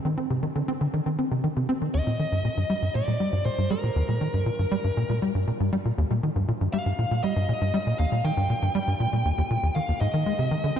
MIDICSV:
0, 0, Header, 1, 3, 480
1, 0, Start_track
1, 0, Key_signature, -3, "major"
1, 0, Tempo, 504202
1, 1848, Time_signature, 4, 2, 24, 8
1, 10279, End_track
2, 0, Start_track
2, 0, Title_t, "Lead electric guitar"
2, 0, Program_c, 0, 29
2, 1849, Note_on_c, 0, 75, 96
2, 2808, Note_off_c, 0, 75, 0
2, 2812, Note_on_c, 0, 74, 89
2, 3285, Note_off_c, 0, 74, 0
2, 3289, Note_on_c, 0, 72, 84
2, 3512, Note_off_c, 0, 72, 0
2, 3529, Note_on_c, 0, 70, 81
2, 4930, Note_off_c, 0, 70, 0
2, 6405, Note_on_c, 0, 77, 94
2, 6884, Note_off_c, 0, 77, 0
2, 6887, Note_on_c, 0, 75, 91
2, 7603, Note_off_c, 0, 75, 0
2, 7606, Note_on_c, 0, 77, 99
2, 7851, Note_on_c, 0, 79, 105
2, 7854, Note_off_c, 0, 77, 0
2, 9283, Note_on_c, 0, 77, 93
2, 9332, Note_off_c, 0, 79, 0
2, 9523, Note_off_c, 0, 77, 0
2, 9527, Note_on_c, 0, 75, 93
2, 10279, Note_off_c, 0, 75, 0
2, 10279, End_track
3, 0, Start_track
3, 0, Title_t, "Analog synth bass"
3, 0, Program_c, 1, 38
3, 46, Note_on_c, 1, 51, 71
3, 149, Note_off_c, 1, 51, 0
3, 167, Note_on_c, 1, 60, 69
3, 270, Note_off_c, 1, 60, 0
3, 288, Note_on_c, 1, 48, 74
3, 390, Note_off_c, 1, 48, 0
3, 407, Note_on_c, 1, 51, 79
3, 448, Note_off_c, 1, 51, 0
3, 528, Note_on_c, 1, 50, 76
3, 596, Note_off_c, 1, 50, 0
3, 649, Note_on_c, 1, 60, 95
3, 689, Note_off_c, 1, 60, 0
3, 769, Note_on_c, 1, 50, 79
3, 837, Note_off_c, 1, 50, 0
3, 890, Note_on_c, 1, 51, 82
3, 957, Note_off_c, 1, 51, 0
3, 1009, Note_on_c, 1, 51, 69
3, 1111, Note_off_c, 1, 51, 0
3, 1129, Note_on_c, 1, 60, 70
3, 1231, Note_off_c, 1, 60, 0
3, 1249, Note_on_c, 1, 48, 71
3, 1351, Note_off_c, 1, 48, 0
3, 1368, Note_on_c, 1, 51, 78
3, 1409, Note_off_c, 1, 51, 0
3, 1490, Note_on_c, 1, 48, 74
3, 1591, Note_off_c, 1, 48, 0
3, 1608, Note_on_c, 1, 60, 100
3, 1649, Note_off_c, 1, 60, 0
3, 1728, Note_on_c, 1, 51, 67
3, 1796, Note_off_c, 1, 51, 0
3, 1848, Note_on_c, 1, 39, 88
3, 1916, Note_off_c, 1, 39, 0
3, 1968, Note_on_c, 1, 46, 70
3, 2070, Note_off_c, 1, 46, 0
3, 2087, Note_on_c, 1, 51, 69
3, 2156, Note_off_c, 1, 51, 0
3, 2208, Note_on_c, 1, 43, 72
3, 2311, Note_off_c, 1, 43, 0
3, 2328, Note_on_c, 1, 46, 82
3, 2369, Note_off_c, 1, 46, 0
3, 2448, Note_on_c, 1, 43, 76
3, 2516, Note_off_c, 1, 43, 0
3, 2567, Note_on_c, 1, 55, 96
3, 2608, Note_off_c, 1, 55, 0
3, 2687, Note_on_c, 1, 43, 74
3, 2756, Note_off_c, 1, 43, 0
3, 2807, Note_on_c, 1, 46, 77
3, 2876, Note_off_c, 1, 46, 0
3, 2928, Note_on_c, 1, 46, 75
3, 3030, Note_off_c, 1, 46, 0
3, 3047, Note_on_c, 1, 55, 72
3, 3150, Note_off_c, 1, 55, 0
3, 3166, Note_on_c, 1, 43, 73
3, 3269, Note_off_c, 1, 43, 0
3, 3286, Note_on_c, 1, 46, 79
3, 3328, Note_off_c, 1, 46, 0
3, 3409, Note_on_c, 1, 43, 73
3, 3511, Note_off_c, 1, 43, 0
3, 3528, Note_on_c, 1, 55, 102
3, 3568, Note_off_c, 1, 55, 0
3, 3650, Note_on_c, 1, 46, 70
3, 3717, Note_off_c, 1, 46, 0
3, 3767, Note_on_c, 1, 39, 95
3, 3836, Note_off_c, 1, 39, 0
3, 3889, Note_on_c, 1, 46, 69
3, 3991, Note_off_c, 1, 46, 0
3, 4008, Note_on_c, 1, 51, 76
3, 4076, Note_off_c, 1, 51, 0
3, 4128, Note_on_c, 1, 43, 72
3, 4230, Note_off_c, 1, 43, 0
3, 4246, Note_on_c, 1, 46, 81
3, 4288, Note_off_c, 1, 46, 0
3, 4369, Note_on_c, 1, 43, 75
3, 4437, Note_off_c, 1, 43, 0
3, 4488, Note_on_c, 1, 55, 101
3, 4529, Note_off_c, 1, 55, 0
3, 4609, Note_on_c, 1, 43, 74
3, 4677, Note_off_c, 1, 43, 0
3, 4731, Note_on_c, 1, 46, 81
3, 4798, Note_off_c, 1, 46, 0
3, 4849, Note_on_c, 1, 46, 74
3, 4951, Note_off_c, 1, 46, 0
3, 4971, Note_on_c, 1, 55, 75
3, 5072, Note_off_c, 1, 55, 0
3, 5091, Note_on_c, 1, 43, 75
3, 5192, Note_off_c, 1, 43, 0
3, 5212, Note_on_c, 1, 46, 77
3, 5250, Note_off_c, 1, 46, 0
3, 5332, Note_on_c, 1, 43, 75
3, 5432, Note_off_c, 1, 43, 0
3, 5451, Note_on_c, 1, 55, 98
3, 5490, Note_off_c, 1, 55, 0
3, 5572, Note_on_c, 1, 46, 72
3, 5638, Note_off_c, 1, 46, 0
3, 5691, Note_on_c, 1, 39, 99
3, 5758, Note_off_c, 1, 39, 0
3, 5811, Note_on_c, 1, 46, 72
3, 5912, Note_off_c, 1, 46, 0
3, 5932, Note_on_c, 1, 51, 76
3, 5998, Note_off_c, 1, 51, 0
3, 6051, Note_on_c, 1, 43, 73
3, 6152, Note_off_c, 1, 43, 0
3, 6171, Note_on_c, 1, 46, 83
3, 6210, Note_off_c, 1, 46, 0
3, 6291, Note_on_c, 1, 43, 79
3, 6358, Note_off_c, 1, 43, 0
3, 6410, Note_on_c, 1, 55, 103
3, 6450, Note_off_c, 1, 55, 0
3, 6529, Note_on_c, 1, 43, 74
3, 6596, Note_off_c, 1, 43, 0
3, 6650, Note_on_c, 1, 46, 79
3, 6717, Note_off_c, 1, 46, 0
3, 6769, Note_on_c, 1, 46, 73
3, 6871, Note_off_c, 1, 46, 0
3, 6890, Note_on_c, 1, 55, 76
3, 6991, Note_off_c, 1, 55, 0
3, 7007, Note_on_c, 1, 43, 75
3, 7110, Note_off_c, 1, 43, 0
3, 7128, Note_on_c, 1, 46, 81
3, 7169, Note_off_c, 1, 46, 0
3, 7247, Note_on_c, 1, 43, 72
3, 7350, Note_off_c, 1, 43, 0
3, 7366, Note_on_c, 1, 55, 103
3, 7408, Note_off_c, 1, 55, 0
3, 7489, Note_on_c, 1, 46, 70
3, 7556, Note_off_c, 1, 46, 0
3, 7607, Note_on_c, 1, 39, 97
3, 7676, Note_off_c, 1, 39, 0
3, 7728, Note_on_c, 1, 46, 72
3, 7830, Note_off_c, 1, 46, 0
3, 7847, Note_on_c, 1, 51, 75
3, 7916, Note_off_c, 1, 51, 0
3, 7968, Note_on_c, 1, 43, 78
3, 8070, Note_off_c, 1, 43, 0
3, 8089, Note_on_c, 1, 46, 78
3, 8129, Note_off_c, 1, 46, 0
3, 8208, Note_on_c, 1, 43, 76
3, 8276, Note_off_c, 1, 43, 0
3, 8328, Note_on_c, 1, 55, 102
3, 8369, Note_off_c, 1, 55, 0
3, 8449, Note_on_c, 1, 43, 73
3, 8516, Note_off_c, 1, 43, 0
3, 8567, Note_on_c, 1, 46, 77
3, 8636, Note_off_c, 1, 46, 0
3, 8690, Note_on_c, 1, 46, 72
3, 8791, Note_off_c, 1, 46, 0
3, 8808, Note_on_c, 1, 39, 72
3, 8876, Note_off_c, 1, 39, 0
3, 8929, Note_on_c, 1, 39, 98
3, 8969, Note_off_c, 1, 39, 0
3, 9048, Note_on_c, 1, 46, 80
3, 9116, Note_off_c, 1, 46, 0
3, 9167, Note_on_c, 1, 39, 77
3, 9236, Note_off_c, 1, 39, 0
3, 9290, Note_on_c, 1, 51, 75
3, 9330, Note_off_c, 1, 51, 0
3, 9410, Note_on_c, 1, 39, 73
3, 9450, Note_off_c, 1, 39, 0
3, 9528, Note_on_c, 1, 44, 97
3, 9596, Note_off_c, 1, 44, 0
3, 9649, Note_on_c, 1, 51, 74
3, 9751, Note_off_c, 1, 51, 0
3, 9770, Note_on_c, 1, 56, 73
3, 9837, Note_off_c, 1, 56, 0
3, 9889, Note_on_c, 1, 48, 75
3, 9991, Note_off_c, 1, 48, 0
3, 10007, Note_on_c, 1, 51, 81
3, 10048, Note_off_c, 1, 51, 0
3, 10127, Note_on_c, 1, 50, 79
3, 10196, Note_off_c, 1, 50, 0
3, 10246, Note_on_c, 1, 60, 99
3, 10279, Note_off_c, 1, 60, 0
3, 10279, End_track
0, 0, End_of_file